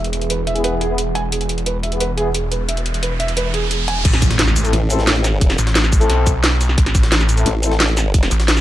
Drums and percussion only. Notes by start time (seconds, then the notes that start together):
0.04 closed hi-hat
0.13 closed hi-hat
0.22 closed hi-hat
0.30 closed hi-hat
0.47 closed hi-hat
0.56 closed hi-hat
0.64 closed hi-hat
0.81 closed hi-hat
0.98 closed hi-hat
1.15 closed hi-hat
1.32 closed hi-hat
1.41 closed hi-hat
1.49 closed hi-hat
1.58 closed hi-hat
1.66 closed hi-hat
1.83 closed hi-hat
1.92 closed hi-hat
2.00 closed hi-hat
2.18 closed hi-hat
2.35 closed hi-hat
2.52 closed hi-hat
2.69 closed hi-hat
2.77 closed hi-hat
2.86 closed hi-hat
2.94 closed hi-hat
3.03 closed hi-hat
3.20 closed hi-hat
3.28 closed hi-hat
3.37 closed hi-hat
3.54 closed hi-hat
3.71 closed hi-hat
3.88 closed hi-hat
4.05 kick, closed hi-hat, crash
4.13 snare, closed hi-hat
4.22 kick, snare, closed hi-hat, shaker
4.31 snare, closed hi-hat
4.39 snare, closed hi-hat
4.48 snare, shaker
4.56 closed hi-hat, shaker
4.65 closed hi-hat, shaker
4.73 closed hi-hat
4.90 closed hi-hat, shaker
4.99 snare
5.07 snare, closed hi-hat
5.16 closed hi-hat
5.24 snare, closed hi-hat, shaker
5.41 kick, closed hi-hat
5.50 snare, closed hi-hat
5.58 closed hi-hat, shaker
5.67 snare, closed hi-hat
5.75 snare, closed hi-hat
5.84 snare, shaker
5.92 kick, closed hi-hat, open hi-hat, shaker
6.01 closed hi-hat, shaker
6.10 snare, closed hi-hat
6.27 kick, closed hi-hat, shaker
6.44 snare, closed hi-hat
6.61 snare, closed hi-hat, shaker
6.69 snare
6.78 kick, closed hi-hat
6.86 snare, closed hi-hat
6.95 kick, snare, closed hi-hat, shaker
7.03 snare, closed hi-hat
7.12 snare, closed hi-hat
7.20 snare, shaker
7.29 closed hi-hat, shaker
7.37 closed hi-hat, shaker
7.46 closed hi-hat
7.63 closed hi-hat, shaker
7.71 snare
7.80 snare, closed hi-hat
7.89 closed hi-hat
7.97 snare, closed hi-hat, shaker
8.14 kick, closed hi-hat
8.23 snare, closed hi-hat
8.31 closed hi-hat, shaker
8.40 snare, closed hi-hat
8.48 snare, closed hi-hat
8.57 snare, shaker